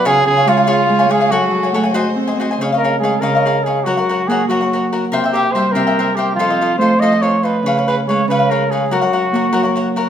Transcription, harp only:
0.05 C#3
0.26 C#3
0.46 G#3
0.89 G#3
1.09 G#3
1.30 F#3
1.51 F#3
1.72 A3
2.16 C4
2.37 C4
2.58 C#3
3.00 G#3
3.21 C#3
3.85 F#3
4.28 A#3
4.49 F#3
5.12 C3
5.54 G3
5.75 C3
6.36 F3
6.78 A3
6.99 F3
7.63 C#3
8.07 G#3
8.28 C#3
8.90 F#3
9.32 A#3
9.53 F#3

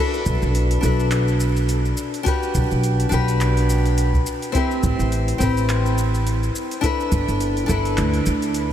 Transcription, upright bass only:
0.26 B1
0.42 B1
0.83 B1
2.55 B1
2.71 B1
3.12 B1
4.83 A1
4.99 A1
5.40 A1
7.12 G1
7.28 G1
7.69 G1
7.98 D2
8.26 D2

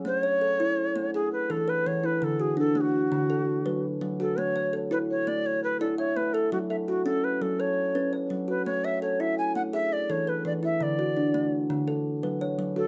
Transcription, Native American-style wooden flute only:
0.07 C5
0.22 C#5
1.15 G#4
1.33 B4
1.51 A4
1.69 B4
1.87 C#5
2.05 B4
2.24 A4
2.41 G#4
2.59 A4
2.77 F#4 G#4
4.21 A4
4.39 C#5
4.92 B4
5.11 C#5
5.28 D5
5.46 C#5
5.64 B4
5.80 A4
5.98 C#5
6.16 B4
6.33 A4
6.52 F#4
6.70 E5
6.88 F#4
7.06 A4
7.24 B4
7.42 A4
7.60 C#5
8.49 B4
8.66 C#5
8.85 E5
9.02 C#5
9.20 E5
9.38 G#5
9.56 F#5
9.74 E5
9.93 D5
10.11 C#5
10.29 B4
10.47 D5
10.65 E5
10.83 D5
12.77 A4

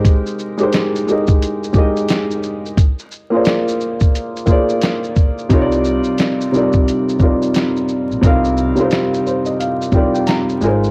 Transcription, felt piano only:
Already playing: G#3 D#4 G4 A#4 C5
0.57 G#3 D#4 G4
0.62 A#4 C5
1.07 G#3 D#4 G4
1.11 A#4 D#5
1.73 G#3 D#4 G4
1.77 A#4 D#5
3.30 A#3 F4 G#4
3.35 C5 D5
4.46 A#3 F4 G#4
4.50 C5 D5
5.49 C3 G3 D#4 F4
5.54 A#4 C#5
5.61 D5
6.52 C3 G3 D#4 F4
6.56 A#4 D5
7.19 C3 G3 D#4 F4
7.23 A#4 D5
8.21 C3 G3 D#4 F4
8.26 A#4 F5
8.75 C3 G3 D#4 F4
8.80 A#4 C5
9.27 C5
9.46 D#5
9.60 F5
9.92 C3 G3 D#4 F4 G5
9.96 A#4 D5
10.14 G5
10.27 A#5
10.61 G#3 D#4 F4 A#4 G#5
10.67 C5

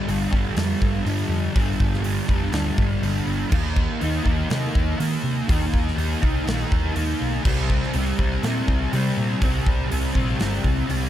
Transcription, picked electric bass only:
0.08 G1
0.32 G1
0.57 F2
0.82 G1
1.06 G2
1.29 F2
1.56 G1
1.80 G1
2.01 G1
2.29 F1
2.52 D2
2.78 G1
3.02 G1
3.26 G1
3.52 D#2
4.02 D#2
4.25 D#2
4.51 C3
4.75 D#2
5.00 D#3
5.24 C3
5.49 D#2
5.73 D#2
5.97 D#2
6.22 C2
6.47 A#1
6.72 D#2
6.96 D#2
7.21 B1
7.45 C2
7.94 C2
8.19 C2
8.43 A#2
8.68 C2
8.93 C3
9.17 A#2
9.42 C2
9.67 C2
9.92 C2
10.15 A#1
10.41 G1
10.64 C2
10.89 C2

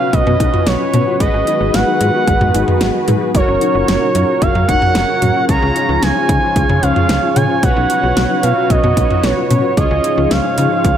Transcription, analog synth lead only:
Already playing: F5
0.13 D#5
0.66 C#5
1.20 D#5
1.74 F#5
3.35 C#5
4.42 F5
4.68 F#5
5.48 A#5
6.02 G#5
6.82 F5
7.36 G#5
7.63 F#5
8.43 F5
8.70 D#5
9.24 C#5
9.77 D#5
10.31 F5

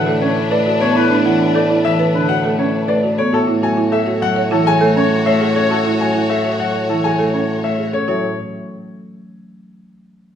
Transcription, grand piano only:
Already playing: F#5
0.22 C#5
0.51 D5
0.81 C#5
0.96 B4
1.25 F#5
1.55 D5
1.85 E5
2.15 B4
2.29 F#5
2.59 C#5
2.88 D5
3.18 C#5
3.34 A4
3.63 G#5
3.92 E5
4.22 F#5
4.52 A4
4.67 G#5
4.97 C#5
5.26 E5
5.56 C#5
5.71 A4
6.01 G#5
6.30 E5
6.59 F#5
6.90 A4
7.04 G#5
7.34 C#5
7.64 E5
7.94 C#5
8.08 C#5

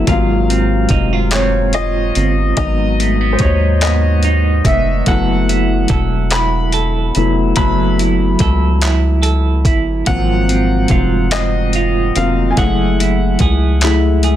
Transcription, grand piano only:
0.08 C3 F#3 A#3 F4 F5
1.33 C#5
1.75 D#5
2.57 F#3 B3 D#4 D#5
3.33 C5
3.41 C#5
3.82 D#5
4.66 E5
5.08 F#3 A3 B3 E4 F#5
6.32 B5
7.17 F#3 A3 B3 E4
7.57 F#3 A3 B3 E4 B5
10.07 F3 F#3 A#3 C4 F#5
11.32 D#5
12.17 F#3 A#3 C4 F4 F5
12.51 G#5
12.58 G#3 A3 E4 F#5
13.84 G#3 A3 E4

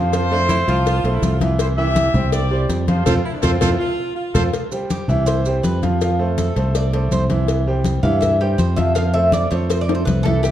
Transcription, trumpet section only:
Already playing: F4 C5
1.60 E4 C5
1.78 G4 E5
2.33 G4 D5
2.88 F4 C5
3.06 F4 A4 C5
3.42 F4 A4 C5
3.61 F4 A4 C5
4.35 F4 A4 C5

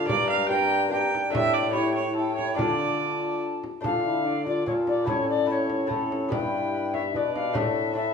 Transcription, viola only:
0.08 D5
0.30 F5
0.49 G5
0.92 G5
1.33 E5
1.54 D5
1.73 C#5
1.95 C#5
2.16 A4
2.36 C#5
2.57 D5
3.84 A4
4.27 D5
4.68 A4
5.07 A4
5.90 C#5
6.33 B4
6.73 B4
6.93 C#5
7.15 D5
7.56 A4
7.96 A4

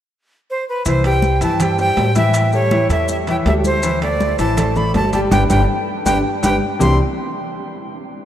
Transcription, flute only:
0.50 C5
0.69 B4
0.87 C5
1.06 G5
1.43 A5
1.62 G5
1.80 G5
2.17 E5
2.54 C#5
2.91 E5
3.11 E5
3.30 G5
3.47 E5
3.66 C5
4.03 D5
4.40 A5
4.77 B5
4.95 A5
5.14 A5
5.32 G5
5.50 G5
6.06 G5
6.44 G5
6.81 C6

